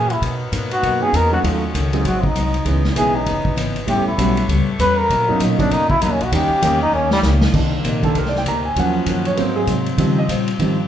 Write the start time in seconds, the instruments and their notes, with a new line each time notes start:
Already playing: steel-string acoustic guitar F#2 E3 A#3 C#4, upright bass A#2, saxophone section C#4 F#4 A#4 E5, trombone G#4
0.10 trombone E4, ride
0.22 upright bass B2, steel-string acoustic guitar B2 A#3 D#4 F#4, saxophone section B3 D#5, kick, ride
0.52 upright bass G#2, steel-string acoustic guitar B2 A#3 D#4 F#4, kick, hi-hat pedal, ride
0.71 trombone F#4, ride
0.82 upright bass F#2, steel-string acoustic guitar B2 A#3 D#4 F#4, kick, ride
1.00 grand piano A#3 B3 C#4 D#4 F#4, trombone G#4
1.13 upright bass E2, steel-string acoustic guitar B2 A#3 D#4 F#4, trombone A#4, kick, hi-hat pedal, ride
1.30 grand piano F#3 A3 C#4 D#4 F#4, trombone F#4
1.43 upright bass D#2, steel-string acoustic guitar D#3 A3 C#4 F#4, grand piano F#3 A3 C#4 D#4 F4, saxophone section C#4 A4, kick, ride
1.74 upright bass C#2, steel-string acoustic guitar D#3 A3 C#4 F#4, kick, hi-hat pedal, ride
1.93 grand piano F#3 G#3 A#3 C4 D#4, ride
2.05 upright bass G#1, steel-string acoustic guitar G#2 F#3 C4 D#4, saxophone section C4 G#4, trombone F#4, kick, ride
2.23 trombone D#4, kick
2.35 upright bass C2, steel-string acoustic guitar G#2 F#3 C4 D#4, kick, hi-hat pedal, ride
2.54 ride
2.65 upright bass C#2, steel-string acoustic guitar C#3 E3 B3 D#4, grand piano E3 G#3 B3 C#4 D#4, saxophone section E3 C#4 B4, kick, ride
2.84 snare
2.95 upright bass B1, steel-string acoustic guitar C#3 E3 B3 D#4, grand piano E3 G#3 B3 C#4 E4, trombone G#4, kick, hi-hat pedal, ride
3.16 trombone D#4
3.26 upright bass F#1, steel-string acoustic guitar C#3 E3 B3 D#4, kick, ride
3.45 kick
3.56 upright bass G#1, steel-string acoustic guitar C#3 E3 B3 D#4, kick, hi-hat pedal, ride
3.76 ride
3.87 upright bass A1, steel-string acoustic guitar A2 G3 B3, grand piano G3 A3 B3 C#4 E4, saxophone section A3 G4 A4 C#5, trombone G4, kick, ride
3.91 steel-string acoustic guitar C#4
3.97 upright bass G1
4.07 upright bass E1, trombone E4
4.17 upright bass B1, steel-string acoustic guitar A2 G3 B3 C#4, grand piano G3 A3 B3 C#4 F#4, kick, hi-hat pedal, ride
4.37 ride
4.48 upright bass C#2, steel-string acoustic guitar A2 G3 B3 C#4, kick, ride
4.67 muted upright bass stroke
4.79 upright bass E2, steel-string acoustic guitar A2 G3 B3 C#4, trombone B4, kick, hi-hat pedal, ride
4.99 trombone A#4
5.09 steel-string acoustic guitar B2 F#3 A#3 D#4, upright bass B2, saxophone section A#3 F#4 D#5, kick, ride
5.19 upright bass A#2
5.27 upright bass F#2, grand piano F#3 A#3 B3 C#4 D#4
5.39 upright bass A#2, steel-string acoustic guitar B2 F#3 A#3 D#4, kick, hi-hat pedal, ride
5.58 grand piano F#3 A#3 B3 C#4 D#4, trombone D4, kick, ride
5.70 upright bass F#2, steel-string acoustic guitar B2 F#3 A#3 D#4, trombone D#4, kick, ride
5.90 trombone E4, kick
6.00 upright bass E2, steel-string acoustic guitar B2 F#3 A#3 D#4, trombone D#4, kick, hi-hat pedal, ride
6.10 upright bass D#2, trombone C#4
6.20 upright bass B1, trombone F#4, ride
6.31 upright bass D#2, steel-string acoustic guitar D#3 A#3 C#4 G4, grand piano D#3 G3 A#3 C#4 D#4, saxophone section C#4 G4, trombone G4, kick, ride
6.49 muted upright bass stroke
6.62 upright bass E2, steel-string acoustic guitar D#3 A#3 C#4 G4, grand piano D#3 G3 A#3 C#4 D#4, kick, hi-hat pedal, ride
6.83 trombone D#4
6.92 upright bass D#2, steel-string acoustic guitar D#3 A#3 C#4 G4, trombone C#4
7.11 trombone G3, snare
7.23 upright bass C#2, steel-string acoustic guitar D#3 A#3 C#4 G4, snare, hi-hat pedal
7.41 snare
7.53 upright bass C2, steel-string acoustic guitar C3 A#3 D#4 G4, grand piano D#3 A#3 D4, saxophone section C4 G4 A#4 C5, kick, crash
7.84 upright bass A#1, steel-string acoustic guitar C3 A#3 D#4 G4, kick, hi-hat pedal, ride
8.03 grand piano D#3 A#3 D4 A4, kick, ride
8.14 upright bass C2, steel-string acoustic guitar C3 A#3 D#4 G4, grand piano A#4, kick, ride
8.25 grand piano D5, snare
8.36 grand piano G5, snare
8.45 upright bass D2, steel-string acoustic guitar C3 A#3 D#4 G4, grand piano A#5, kick, hi-hat pedal, ride
8.65 grand piano G#5
8.75 upright bass D#2, steel-string acoustic guitar D#3 A#3 C#4 F#4, grand piano F3 F#3 C#4, saxophone section C#4 D#4, kick, ride
8.80 grand piano F#5
9.06 upright bass F#2, steel-string acoustic guitar D#3 A#3 C#4 F#4, kick, hi-hat pedal, ride
9.25 grand piano C#5, ride
9.35 upright bass G#2, steel-string acoustic guitar G#2 F#3, grand piano F#3 A#3 C4 B4, saxophone section C4 G#4, kick, ride
9.39 steel-string acoustic guitar C4 D#4, grand piano C5
9.56 grand piano G#4
9.67 steel-string acoustic guitar G#2 F#3 C4 D#4, upright bass C3, kick, hi-hat pedal, ride
9.86 ride
9.97 upright bass C#3, steel-string acoustic guitar C#3 G3, grand piano D#3 F3 G3 C4, saxophone section F4 G4, kick, ride
10.01 steel-string acoustic guitar C4 F4
10.18 grand piano D#5
10.29 upright bass A#2, steel-string acoustic guitar C#3 G3 C4 F4, grand piano C5, kick, hi-hat pedal, ride
10.47 ride
10.59 upright bass G#2, steel-string acoustic guitar C#3 G3 C4 F4, grand piano D#3 F3 G3 C4, kick, ride